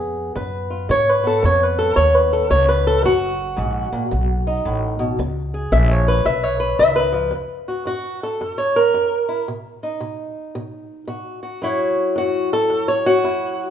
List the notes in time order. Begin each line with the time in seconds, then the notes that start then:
Already playing: F2 C#3 B3 G#4
0.35 F#2 C#3 B4
0.70 F4
0.89 G#2 C#3 C#5
1.09 B4
1.24 B3 A4
1.43 F2 C#3 C#5
1.63 B4
1.79 A4
1.96 D#2 C#3 C#5
2.15 B4
2.33 A4
2.50 C#2 C#3 C#5
2.69 B4
2.87 A4
3.03 F#1 F#2 F#4
3.57 A#1 G#2
3.93 A#2, muted upright bass stroke
4.11 B1 B2
4.47 D#4
4.65 A1 A2
4.99 B2
5.19 C#2 C#3
5.54 G#4
5.72 A#1 C#3 E5
5.91 C#5
6.08 B4
6.25 B1 C#3 E5
6.43 C#5
6.60 B4
6.79 C#2 D#3 E5
6.96 B4
7.12 F3
7.31 F#2
7.68 F#4
7.85 F#2 F#4
8.23 A4
8.41 F#2
8.58 C#5
8.76 A#4
8.94 F#2
9.29 E4
9.48 B2
9.83 D#4
10.01 B2
10.55 B2
11.08 B2 F#4
11.43 F#4
11.62 F#2 F#3 E4 F#4 C#5
12.16 F#2 F#4
12.53 A4
12.70 F#2
12.88 C#5
13.06 F#4
13.24 F#2 E4